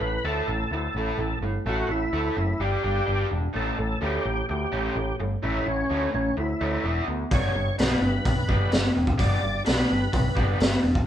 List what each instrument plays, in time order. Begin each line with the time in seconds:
Already playing: tonewheel organ B4
0.01 picked electric bass A1, overdriven electric guitar A3 E4
0.24 picked electric bass D2, overdriven electric guitar A3 E4 A4, tonewheel organ A4
0.48 picked electric bass A1, overdriven electric guitar A3 E4
0.71 picked electric bass D2, overdriven electric guitar A3 E4, tonewheel organ A4
0.95 picked electric bass A1, overdriven electric guitar A3 E4 A4
1.18 picked electric bass A1, overdriven electric guitar A3 E4
1.41 picked electric bass G1, overdriven electric guitar A3 E4
1.66 picked electric bass A1, overdriven electric guitar A3 E4 A4, tonewheel organ F#4
1.89 picked electric bass A1, overdriven electric guitar A3 E4, tonewheel organ E4
2.13 picked electric bass D2, overdriven electric guitar A3 E4 A4
2.36 picked electric bass F#1, overdriven electric guitar A3 E4, tonewheel organ E4
2.60 picked electric bass G1, overdriven electric guitar G3 D4 G4, tonewheel organ G4
2.83 picked electric bass G1, overdriven electric guitar G3 D4 G4
3.07 picked electric bass G1, overdriven electric guitar G3 D4 G4
3.30 picked electric bass E1, overdriven electric guitar G3 D4
3.54 picked electric bass A1, overdriven electric guitar A2 A3 C#4, tonewheel organ A4
3.78 picked electric bass A1, overdriven electric guitar A2 A3
4.01 picked electric bass D2, overdriven electric guitar A2 A3 C#4, tonewheel organ G4
4.25 picked electric bass A1, overdriven electric guitar A2 A3
4.49 picked electric bass D2, overdriven electric guitar A2 A3, tonewheel organ G4
4.72 picked electric bass A1, overdriven electric guitar A2 A3 C#4
4.95 picked electric bass A1, overdriven electric guitar A2 A3
5.20 picked electric bass G1, overdriven electric guitar A2 A3
5.43 picked electric bass A1, overdriven electric guitar A2 A3 C#4, tonewheel organ E4
5.66 picked electric bass A1, overdriven electric guitar A2 A3, tonewheel organ C#4
5.90 picked electric bass D2, overdriven electric guitar A2 A3 C#4
6.14 picked electric bass A1, overdriven electric guitar A2 A3, tonewheel organ C#4
6.37 picked electric bass D2, overdriven electric guitar A2 A3, tonewheel organ E4
6.61 picked electric bass D2, overdriven electric guitar A2 A3 C#4
6.84 picked electric bass E1, overdriven electric guitar E3 B3 E4
7.08 picked electric bass D2, overdriven electric guitar E3 B3
7.31 picked electric bass G1, overdriven electric guitar G3 B3 D4, tonewheel organ C#5, kick, open hi-hat
7.54 picked electric bass G1, overdriven electric guitar G3 D4
7.78 picked electric bass B1, overdriven electric guitar G3 B3 D4, tonewheel organ B4, snare, open hi-hat
8.01 picked electric bass G1, overdriven electric guitar G3 D4
8.25 picked electric bass B1, overdriven electric guitar G3 D4, tonewheel organ B4, kick, open hi-hat
8.49 picked electric bass G1, overdriven electric guitar G3 B3 D4, kick
8.72 picked electric bass G1, overdriven electric guitar G3 D4, snare, open hi-hat
8.95 picked electric bass E1, overdriven electric guitar G3 D4
9.07 kick
9.18 picked electric bass G1, overdriven electric guitar G3 B3 D4, tonewheel organ D5, kick, open hi-hat
9.41 picked electric bass G1, overdriven electric guitar G3 D4
9.65 picked electric bass B1, overdriven electric guitar G3 B3 D4, tonewheel organ B4, snare, open hi-hat
9.89 picked electric bass G1, overdriven electric guitar G3 D4
10.13 picked electric bass B1, overdriven electric guitar G3 D4, tonewheel organ B4, kick, open hi-hat
10.35 picked electric bass G1, overdriven electric guitar G3 B3 D4, kick
10.59 picked electric bass G1, overdriven electric guitar G3 D4, snare, open hi-hat
10.82 picked electric bass E1, overdriven electric guitar G3 D4
10.95 kick